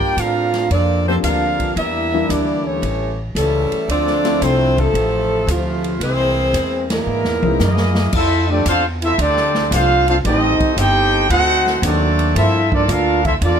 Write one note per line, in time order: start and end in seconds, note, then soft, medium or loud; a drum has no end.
0.00 0.16 G2 medium
0.00 0.19 A#3 medium
0.00 0.17 D4 medium
0.00 0.19 F4 medium
0.00 0.18 G4 medium
0.00 0.18 A#4 loud
0.00 0.19 D5 loud
0.00 0.19 G5 loud
0.00 kick soft
0.17 0.69 A2 medium
0.17 0.71 C4 medium
0.17 0.70 D4 medium
0.17 0.72 D4 medium
0.17 0.71 F4 medium
0.17 0.71 A4 medium
0.17 0.72 A#4 medium
0.17 0.72 F5 loud
0.17 hi-hat pedal medium
0.17 ride medium
0.54 snare soft
0.54 ride soft
0.70 1.22 F2 loud
0.70 1.04 F3 medium
0.70 1.05 A#3 medium
0.70 1.04 D4 medium
0.70 1.05 F4 medium
0.70 1.05 A4 medium
0.70 1.05 D5 loud
0.70 ride medium
1.07 1.15 D3 medium
1.07 1.15 F3 medium
1.07 1.74 F3 medium
1.07 1.74 A#3 medium
1.07 1.16 A#3 medium
1.07 1.74 C4 medium
1.07 1.15 C4 medium
1.07 1.74 D4 medium
1.07 1.16 F4 medium
1.07 1.74 G4 medium
1.07 1.16 A4 medium
1.07 1.16 C5 medium
1.22 1.75 D2 medium
1.22 1.73 A#3 medium
1.22 1.73 D4 medium
1.22 1.74 D4 medium
1.22 1.73 F4 medium
1.22 1.74 A4 medium
1.22 1.74 A#4 medium
1.22 1.74 F5 loud
1.22 hi-hat pedal medium
1.22 ride medium
1.60 kick soft
1.60 ride medium
1.76 2.28 E2 medium
1.76 2.27 G3 medium
1.76 2.27 A#3 medium
1.76 2.31 D4 medium
1.76 2.30 E4 medium
1.76 2.29 G4 loud
1.76 2.31 A#4 medium
1.76 2.31 E5 loud
1.76 ride medium
2.14 2.80 E3 medium
2.14 2.80 G3 medium
2.14 2.80 A#3 medium
2.14 2.80 D4 medium
2.14 2.80 E4 medium
2.28 2.81 D2 medium
2.28 2.63 G3 medium
2.28 2.65 A#3 medium
2.28 2.66 A#3 medium
2.28 2.65 D4 medium
2.28 2.66 E4 medium
2.28 2.66 G4 medium
2.28 2.66 D5 medium
2.28 hi-hat pedal medium
2.28 ride medium
2.64 3.17 E3 medium
2.64 3.17 G3 medium
2.64 3.19 A3 medium
2.64 3.17 C#4 medium
2.64 3.19 E4 medium
2.64 3.19 G4 medium
2.64 3.19 C#5 medium
2.82 3.34 A1 medium
2.82 ride medium
3.35 3.69 C#2 loud
3.35 3.85 C#3 medium
3.35 3.86 E3 medium
3.35 3.86 G3 loud
3.35 3.86 A3 medium
3.35 3.86 C#4 medium
3.35 3.86 E4 medium
3.35 3.86 A4 loud
3.35 hi-hat pedal medium
3.35 ride medium
3.71 muted upright bass stroke soft
3.71 ride soft
3.88 4.40 D2 medium
3.88 4.41 F3 loud
3.88 4.41 A3 medium
3.88 4.43 C4 loud
3.88 4.43 D4 medium
3.88 4.42 F4 loud
3.88 4.43 A4 loud
3.88 4.43 D5 loud
3.88 ride medium
4.07 snare soft
4.24 4.92 F3 medium
4.24 4.92 A3 medium
4.24 4.92 C4 medium
4.24 4.92 D4 medium
4.24 4.92 E4 medium
4.24 snare soft
4.24 ride soft
4.41 4.93 C2 medium
4.41 4.78 F3 medium
4.41 4.78 A3 medium
4.41 4.79 A3 medium
4.41 4.78 C4 loud
4.41 4.79 E4 loud
4.41 4.79 F4 loud
4.41 4.79 C5 loud
4.41 hi-hat pedal medium
4.41 ride medium
4.78 5.48 C3 medium
4.78 5.47 F3 loud
4.78 5.49 F3 medium
4.78 5.49 A3 medium
4.78 5.49 C4 medium
4.78 5.49 E4 medium
4.78 5.49 A4 loud
4.78 kick medium
4.78 ride soft
4.94 5.46 A1 medium
4.94 ride medium
5.47 5.99 D2 loud
5.47 6.02 A2 medium
5.47 6.02 C3 medium
5.47 6.01 F3 medium
5.47 6.03 A3 medium
5.47 6.02 C4 medium
5.47 6.01 E4 medium
5.47 6.03 F4 loud
5.47 hi-hat pedal medium
5.47 ride medium
5.84 ride soft
6.00 6.52 C2 medium
6.00 6.86 E3 medium
6.00 6.86 G#3 medium
6.00 6.87 A#3 loud
6.00 6.86 C4 medium
6.00 6.87 E4 loud
6.00 6.87 G#4 loud
6.00 6.87 C5 loud
6.00 ride medium
6.53 7.05 E2 medium
6.53 hi-hat pedal medium
6.53 ride medium
6.90 7.92 A#2 medium
6.90 7.92 E3 medium
6.90 7.93 G#3 medium
6.90 7.60 A#3 medium
6.90 7.93 D#4 medium
6.90 7.93 E4 medium
6.90 7.93 A#4 medium
6.90 snare medium
6.90 ride medium
7.06 7.24 G#2 medium
7.24 7.42 E2 medium
7.24 snare soft
7.42 7.59 C2 medium
7.42 7.59 E3 medium
7.42 7.59 G#3 medium
7.42 7.59 A#3 medium
7.42 7.59 C4 medium
7.42 7.59 D#4 medium
7.42 high tom medium
7.60 8.11 F#2 medium
7.60 8.10 G#3 medium
7.60 8.10 A#3 medium
7.60 8.11 A#3 medium
7.60 8.10 E4 medium
7.60 8.10 G#4 medium
7.60 8.10 D#5 medium
7.60 snare medium
7.60 hi-hat pedal medium
7.77 snare medium
7.95 snare medium
8.13 8.64 F2 medium
8.13 8.48 C4 medium
8.13 8.47 E4 medium
8.13 8.48 F4 medium
8.13 8.48 A4 medium
8.13 8.48 E5 loud
8.13 kick medium
8.13 crash loud
8.49 8.66 D3 medium
8.49 8.61 F3 medium
8.49 8.66 A3 medium
8.49 8.61 A3 medium
8.49 8.67 C4 medium
8.49 8.65 D4 medium
8.49 8.61 D4 medium
8.49 8.61 G4 medium
8.49 8.67 G4 medium
8.49 8.68 A4 medium
8.49 8.67 D5 medium
8.66 9.17 E2 loud
8.66 8.83 C4 medium
8.66 8.82 D4 medium
8.66 8.84 D4 medium
8.66 8.83 F4 medium
8.66 8.85 A4 medium
8.66 8.84 C5 medium
8.66 8.85 F5 medium
8.66 hi-hat pedal medium
8.66 ride medium
9.02 9.19 C4 medium
9.02 9.18 E4 medium
9.02 9.19 F4 medium
9.02 9.20 A4 medium
9.02 9.20 E5 loud
9.02 ride medium
9.18 9.70 D2 medium
9.18 9.69 D3 medium
9.18 9.68 A3 medium
9.18 9.69 C4 medium
9.18 9.68 D4 medium
9.18 9.69 G4 medium
9.18 9.69 A4 medium
9.18 9.69 D5 loud
9.18 ride medium
9.37 snare soft
9.55 snare medium
9.71 10.23 C2 loud
9.71 9.96 F3 medium
9.71 9.96 A3 medium
9.71 10.07 C4 medium
9.71 10.07 D4 medium
9.71 9.97 D4 medium
9.71 10.08 D4 medium
9.71 10.07 F4 loud
9.71 9.96 G4 loud
9.71 10.08 A4 loud
9.71 10.08 C5 medium
9.71 10.08 F5 loud
9.71 hi-hat pedal medium
9.71 ride medium
10.08 10.16 C4 medium
10.08 10.15 D4 medium
10.08 10.17 D4 medium
10.08 10.16 F4 medium
10.08 10.17 A4 medium
10.08 10.16 C5 medium
10.08 10.17 F5 medium
10.08 ride medium
10.23 10.58 A1 medium
10.23 10.49 D#3 loud
10.23 10.74 G3 medium
10.23 10.49 A3 medium
10.23 10.49 C4 medium
10.23 10.74 C4 medium
10.23 10.75 C4 medium
10.23 10.74 D#4 medium
10.23 10.49 G4 loud
10.23 10.75 G4 medium
10.23 10.75 A4 medium
10.23 10.75 D#5 loud
10.23 ride medium
10.60 muted upright bass stroke soft
10.60 kick medium
10.60 ride medium
10.77 11.29 G1 medium
10.77 11.29 C4 medium
10.77 11.31 D#4 medium
10.77 11.30 D#4 loud
10.77 11.30 G4 loud
10.77 11.30 A4 loud
10.77 11.30 C5 loud
10.77 11.31 G5 loud
10.77 hi-hat pedal medium
10.77 ride medium
11.30 11.81 D2 loud
11.30 11.80 A3 medium
11.30 11.80 C4 medium
11.30 11.80 D#4 loud
11.30 11.80 F#4 medium
11.30 11.80 A4 loud
11.30 11.80 C5 loud
11.30 11.80 F#5 loud
11.30 ride medium
11.67 snare soft
11.82 12.34 D#2 loud
11.82 12.07 D#3 loud
11.82 12.36 F#3 medium
11.82 12.37 A3 medium
11.82 12.07 C4 medium
11.82 12.36 C4 medium
11.82 12.08 D4 medium
11.82 12.36 D4 medium
11.82 12.08 F#4 loud
11.82 12.37 F#4 medium
11.82 12.37 A4 medium
11.82 12.37 D5 loud
11.82 hi-hat pedal medium
11.82 ride loud
12.19 ride soft
12.35 12.87 G2 medium
12.35 12.60 F3 loud
12.35 12.60 A#3 medium
12.35 12.60 C4 medium
12.35 12.70 C4 medium
12.35 12.69 E4 medium
12.35 12.70 F4 medium
12.35 12.60 A4 loud
12.35 12.71 A4 medium
12.35 12.71 E5 loud
12.35 ride medium
12.72 12.89 F3 medium
12.72 12.87 A#3 medium
12.72 12.90 A#3 medium
12.72 12.88 D4 medium
12.72 12.90 F4 medium
12.72 12.90 A4 medium
12.72 12.90 D5 medium
12.72 kick medium
12.88 13.40 D2 medium
12.88 13.25 A#3 medium
12.88 13.25 D4 medium
12.88 13.25 F4 medium
12.88 13.26 A4 medium
12.88 13.26 A#4 medium
12.88 13.26 F5 loud
12.88 hi-hat pedal medium
12.88 ride medium
12.92 13.27 D4 medium
13.24 13.34 C4 medium
13.24 13.32 E4 medium
13.24 13.34 F4 medium
13.24 13.34 A4 medium
13.24 13.34 E5 medium
13.24 kick medium
13.24 ride soft
13.41 13.60 E2 loud
13.41 13.60 A#3 medium
13.41 13.60 D4 medium
13.41 13.60 F4 medium
13.41 13.60 A4 medium
13.41 13.60 D5 loud
13.41 ride medium